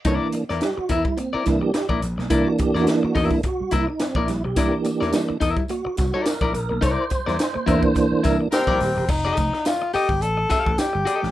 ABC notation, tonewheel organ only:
X:1
M:4/4
L:1/16
Q:"Swing 16ths" 1/4=106
K:Cmix
V:1 name="Tonewheel organ"
z4 G ^F E2 C2 E G2 z3 | E ^F G F G F2 E F2 E _E C =E2 G- | G4- G z3 ^F2 F2 B2 B2 | c6 c4 B2 G4 |
z16 |]
V:2 name="Tonewheel organ"
[E,B,D]2 z8 [E,B,D]2 z4 | [E,B,D]6 [E,B,D]2 z8 | [E,B,D]6 z8 z2 | z6 [E,B,D]6 z4 |
z16 |]